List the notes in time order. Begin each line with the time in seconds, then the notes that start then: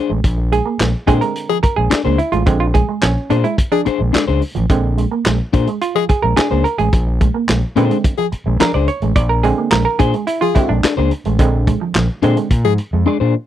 Already playing: C5
0.10 A1 G#3
0.24 A#1, kick, closed hi-hat
0.38 muted clean electric guitar stroke
0.52 G#3 G#4, closed hi-hat
0.66 A#3
0.79 A#1 G#3, snare, clap, closed hi-hat
1.07 A#2 D3 G#3 C4 D4 G#4 C5, muted clean electric guitar stroke, kick, closed hi-hat
1.21 G#3 A#4, closed hi-hat
1.36 closed hi-hat
1.49 F3 G#4
1.63 A#4, muted clean electric guitar stroke, muted fingered electric bass stroke, kick, closed hi-hat
1.76 A#1 G#3 G#4
1.90 D4 G#4 D5, muted fingered electric bass stroke, snare, clap, closed hi-hat
2.05 C#2 A#3 D4 G#4 C5
2.18 E4, muted clean electric guitar stroke, closed hi-hat
2.32 A1 G#3 F4, closed hi-hat
2.46 A#1 D3 G#3 C4, kick, closed hi-hat
2.60 F4, muted clean electric guitar stroke
2.74 G#3 G#4, kick, closed hi-hat
2.89 G#3
3.02 A#1 F3 C#4, snare, clap, closed hi-hat
3.30 A#2 D4 G#4 C5, muted clean electric guitar stroke, closed hi-hat
3.44 G#3 E4, closed hi-hat
3.58 kick, closed hi-hat
3.72 F3 D4 G#4
3.85 D4 G#4 C5, muted clean electric guitar stroke, muted fingered electric bass stroke, closed hi-hat
3.99 A#1 G#3
4.13 G#3 D4 G#4 D5, muted fingered electric bass stroke, snare, clap, closed hi-hat
4.27 C#2 D4 G#4 C5
4.41 muted clean electric guitar stroke, open hi-hat
4.55 A1 F3, closed hi-hat
4.69 A#1 D3 G#3 C4, kick, closed hi-hat
4.83 muted clean electric guitar stroke
4.97 G#3, closed hi-hat
5.11 A#3
5.25 A#1 G#3, snare, clap, closed hi-hat
5.53 A#2 D4 G#4 C5, muted clean electric guitar stroke, kick, closed hi-hat
5.67 G#3, closed hi-hat
5.81 F4, closed hi-hat
5.95 F3 G#4
6.09 G#4, muted clean electric guitar stroke, muted fingered electric bass stroke, kick, closed hi-hat
6.22 A#1 G#3 A#4
6.36 D4 G#4 D5, muted fingered electric bass stroke, snare, clap, closed hi-hat
6.51 C#2 A#3 D4 G#4 C5
6.64 A#4, muted clean electric guitar stroke, closed hi-hat
6.78 A1 G#3 G#4, closed hi-hat
6.93 A#1, kick, closed hi-hat
7.07 muted clean electric guitar stroke
7.20 G#3, kick, closed hi-hat
7.34 A#3
7.48 A#1 G#3, snare, clap, closed hi-hat
7.76 A#2 D3 G#3 C4 D4 G#4 C5, muted clean electric guitar stroke, closed hi-hat
7.91 G#3, closed hi-hat
8.04 kick, closed hi-hat
8.18 F3 G#4
8.32 muted clean electric guitar stroke, muted fingered electric bass stroke, closed hi-hat
8.46 A#1 G#3
8.60 F3 D4 G#4 A#4 D5, muted fingered electric bass stroke, snare, clap, closed hi-hat
8.74 C#2 D4 G#4 C5 D5
8.88 C#5, muted clean electric guitar stroke, closed hi-hat
9.02 A1 G#3, closed hi-hat
9.16 A#1 D5, kick, closed hi-hat
9.29 A#4, muted clean electric guitar stroke
9.43 D3 G#3 C4 G#4, closed hi-hat
9.58 A#3
9.71 A#1 G#3 A#4, snare, clap, closed hi-hat
9.85 A#4
9.99 A#2 D4 G#4 C5, muted clean electric guitar stroke, kick, closed hi-hat
10.14 G#3, closed hi-hat
10.27 E4, closed hi-hat
10.41 F3 F4 G#4
10.55 D3 G#3 C4 E4, muted clean electric guitar stroke, muted fingered electric bass stroke, kick, closed hi-hat
10.69 A#1 G#3 D4
10.83 D4 G#4 D5, muted fingered electric bass stroke, snare, clap, closed hi-hat
10.97 C#2 A#3 D4 G#4 C5
11.11 muted clean electric guitar stroke, closed hi-hat
11.25 A1 G#3, closed hi-hat
11.39 A#1 D3 G#3 C4, kick, closed hi-hat
11.53 muted clean electric guitar stroke
11.67 G#3, kick, closed hi-hat
11.81 F3
11.95 A#1 F3, snare, clap, closed hi-hat
12.22 A#2 D3 G#3 C4 D4 G#4 C5, muted clean electric guitar stroke, closed hi-hat
12.37 G#3, closed hi-hat
12.51 A#2, kick, closed hi-hat
12.64 G#2 F3 G#4
12.78 muted clean electric guitar stroke, closed hi-hat
12.93 F2 G#3
13.06 G#3 D4 G#4 D5
13.20 A#2 D4 G#4 C5
13.35 muted clean electric guitar stroke